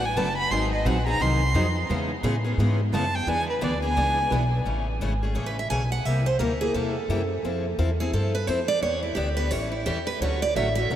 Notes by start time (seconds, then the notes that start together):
Already playing: A1
0.05 G#5
0.16 F#1 D3 F#3 A3 B3 D4 F#4 B4 A5
0.38 B5
0.51 G#1 D#3 F#3 C4 D#4 G#4 C6
0.73 D#5
0.85 A#1 D#3 F#3 C4 D#4 G#4 F#5
1.07 C4 D#4 G#4 A#5
1.20 C2 D#3 F#3 C4 D#4 G#4 C6
1.54 F2 D#3 F#3 C4 D#4 G#4
1.89 E2 C#3 E3 G#3 B3 C#4 E4 G#4
2.23 A2 C#3 E3 G#3 B3 C#4 E4 G#4
2.44 B3 C#4 G#4
2.58 G#2 C#3 E3 G#3 B3 C#4 E4 G#4
2.92 F#2 C#3 E3 G#3 B3 C#4 E4 G#4 A5
3.15 G5
3.26 E2 E3 B3 D4 G#4 B4 G#5
3.50 B4
3.61 D2 E3 B3 D4 G#4 B4 D5
3.82 B3 D4 G#4 G#5
3.96 C#2 E3 B3 D4 G#4 B4
4.31 B1 E3 B3 D4 G#4 B4
4.65 A1 C#3 E3 A3 C#4 G#4
5.00 G#1 C#3 E3 A3 C#4 G#4
5.23 A3 C#4 G#4
5.35 A1 C#3 E3 A3 C#4 G#4
5.46 B4
5.59 E5
5.70 B1 C#3 E3 A3 C#4 G#4 G#5
5.92 F#5
6.05 C2 C3 G3 A#3 E4 G4 E5
6.26 C5
6.39 D2 C3 G3 A#3 E4 G4 A#4
6.61 A#3 E4 G4 G#4
6.74 E2 C3 G3 A#3 E4 G4 A4
7.09 F#2 C3 G3 A#3 E4 G4
7.43 F2 F3 C4 E4 A4
7.78 E2 F3 C4 E4 A4
8.00 C4 E4 G#4 A4
8.13 G2 F3 C4 E4 A4
8.35 B4
8.47 F2 F3 C4 E4 A4 C5
8.68 D5
8.82 E2 E3 B3 D4 G4 C#5
9.03 E4
9.15 D2 E3 B3 D4 G4
9.37 B3 D4 G4 B4
9.51 A1 E3 G3 C#4 E4 A4 C#5
9.72 E4
9.86 E2 E3 G3 C#4 E4 G4 A4
10.07 B4
10.20 D2 D3 F#3 A3 C#4 F#4 A4 C#5
10.42 D5
10.55 A1 D3 F#3 A3 C#4 F#4 A4 E5
10.75 A3 C#4 F#4 E5
10.90 B1 D3 F#3 A3 C#4 F#4 A4